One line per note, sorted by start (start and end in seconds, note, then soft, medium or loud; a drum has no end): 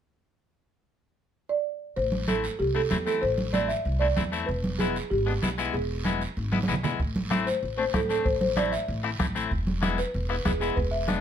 1.49 1.93 D5 medium
1.96 2.47 A1 medium
1.96 2.26 C5 medium
1.96 long guiro medium
2.12 high conga medium
2.28 2.45 A3 medium
2.28 2.45 C4 medium
2.28 2.45 E4 medium
2.28 2.57 A4 medium
2.28 high conga medium
2.28 short guiro medium
2.44 short guiro medium
2.59 2.85 C2 medium
2.59 2.75 G4 medium
2.59 long guiro medium
2.75 2.81 A3 medium
2.75 2.81 C4 soft
2.75 2.81 E4 medium
2.75 3.04 A4 medium
2.91 3.16 E2 medium
2.91 2.96 A3 medium
2.91 2.97 C4 medium
2.91 2.97 E4 medium
2.91 high conga medium
2.91 short guiro medium
3.06 3.23 A3 medium
3.06 3.23 C4 soft
3.06 3.24 E4 medium
3.06 3.22 A4 medium
3.06 short guiro medium
3.22 3.73 A1 medium
3.22 3.51 C5 medium
3.22 long guiro medium
3.38 high conga medium
3.53 3.70 A3 medium
3.53 3.71 C4 medium
3.53 3.71 E4 medium
3.53 3.68 D5 medium
3.53 high conga medium
3.53 short guiro medium
3.68 3.98 E5 medium
3.68 short guiro medium
3.85 4.11 C2 medium
3.85 long guiro medium
4.00 4.06 A3 medium
4.00 4.07 C4 soft
4.00 4.07 E4 medium
4.00 4.44 D5 medium
4.16 4.42 E2 medium
4.16 4.22 A3 medium
4.16 4.22 C4 medium
4.16 4.23 E4 medium
4.16 high conga medium
4.16 short guiro medium
4.32 4.48 A3 medium
4.32 4.48 C4 soft
4.32 4.49 E4 medium
4.32 short guiro medium
4.46 4.99 E1 medium
4.46 4.80 B4 medium
4.46 long guiro medium
4.64 high conga medium
4.79 4.96 G#3 medium
4.79 4.97 B3 medium
4.79 4.97 E4 medium
4.79 5.08 G#4 medium
4.79 high conga medium
4.79 short guiro medium
4.96 short guiro medium
5.10 5.36 G#1 medium
5.10 5.70 G4 medium
5.10 long guiro medium
5.26 5.32 G#3 medium
5.26 5.32 B3 medium
5.26 5.33 D4 medium
5.42 5.68 B1 medium
5.42 5.48 G#3 medium
5.42 5.48 B3 medium
5.42 5.48 E4 medium
5.42 high conga medium
5.42 short guiro medium
5.58 5.75 G#3 medium
5.58 5.75 B3 medium
5.58 5.75 E4 medium
5.58 short guiro medium
5.73 6.24 E1 medium
5.73 6.64 G#4 medium
5.73 long guiro medium
6.05 6.22 G#3 medium
6.05 6.22 B3 medium
6.05 6.22 E4 medium
6.05 high conga medium
6.05 short guiro medium
6.21 short guiro medium
6.37 6.62 G#1 medium
6.37 long guiro medium
6.52 6.58 G#3 medium
6.52 6.58 B3 medium
6.52 6.58 E4 medium
6.52 high conga medium
6.63 high conga medium
6.68 6.93 B1 medium
6.68 6.74 G#3 medium
6.68 6.74 B3 medium
6.68 6.74 E4 medium
6.68 short guiro medium
6.74 low conga medium
6.83 6.99 G#3 medium
6.83 7.00 B3 medium
6.83 7.00 E4 medium
6.83 low conga medium
6.83 short guiro medium
7.00 7.50 A1 medium
7.00 bombo low medium
7.00 long guiro medium
7.16 high conga medium
7.30 7.47 A3 medium
7.30 7.47 C4 medium
7.30 7.48 E4 medium
7.30 bombo rim medium
7.30 high conga medium
7.30 short guiro medium
7.46 7.76 C5 medium
7.46 short guiro medium
7.63 7.88 A1 medium
7.63 long guiro medium
7.77 7.83 A3 medium
7.77 7.84 C4 medium
7.77 7.84 D4 medium
7.77 7.92 C5 medium
7.94 8.19 A1 medium
7.94 7.99 A3 medium
7.94 8.00 C4 medium
7.94 8.00 E4 medium
7.94 8.09 A4 medium
7.94 bombo low medium
7.94 bombo rim medium
7.94 high conga medium
7.94 short guiro medium
8.09 8.26 A3 medium
8.09 8.26 C4 soft
8.09 8.27 D4 medium
8.09 8.24 A4 medium
8.09 short guiro medium
8.25 8.76 A1 medium
8.25 8.40 C5 medium
8.25 bombo low medium
8.25 long guiro medium
8.41 8.56 C5 medium
8.41 high conga medium
8.56 8.73 A3 medium
8.56 8.73 C4 medium
8.56 8.74 E4 medium
8.56 8.71 D5 medium
8.56 bombo rim medium
8.56 high conga medium
8.56 short guiro medium
8.72 9.31 E5 medium
8.72 short guiro medium
8.88 9.13 A1 medium
8.88 long guiro medium
9.03 9.09 A3 medium
9.03 9.09 C4 medium
9.03 9.10 E4 medium
9.03 bombo rim medium
9.19 9.45 A1 medium
9.19 9.25 A3 medium
9.19 9.25 C4 medium
9.19 9.25 E4 medium
9.19 bombo low medium
9.19 bombo rim medium
9.19 high conga medium
9.19 short guiro medium
9.35 9.51 A3 medium
9.35 9.51 C4 medium
9.35 9.51 E4 medium
9.35 short guiro medium
9.51 10.02 E1 medium
9.51 bombo low medium
9.51 long guiro medium
9.67 high conga medium
9.82 9.99 G#3 medium
9.82 9.99 B3 medium
9.82 9.99 E4 medium
9.82 bombo rim medium
9.82 high conga medium
9.82 short guiro medium
9.98 10.29 B4 medium
9.98 short guiro medium
10.14 10.39 E1 medium
10.14 long guiro medium
10.29 10.35 G#3 medium
10.29 10.35 B3 medium
10.29 10.35 E4 medium
10.29 10.44 B4 medium
10.29 bombo rim medium
10.45 10.71 E1 medium
10.45 10.51 G#3 medium
10.45 10.51 B3 medium
10.45 10.51 E4 medium
10.45 10.59 G#4 medium
10.45 bombo low medium
10.45 bombo rim medium
10.45 high conga medium
10.45 short guiro medium
10.60 10.77 G#3 medium
10.60 10.78 B3 medium
10.60 10.78 E4 medium
10.60 10.68 G#4 medium
10.60 short guiro medium
10.76 11.21 E1 medium
10.76 10.83 B4 medium
10.76 bombo low medium
10.76 long guiro medium
10.91 11.21 E5 loud
11.08 11.21 G#3 medium
11.08 11.21 B3 medium
11.08 11.21 D4 medium
11.08 bombo rim medium
11.08 high conga medium
11.08 short guiro medium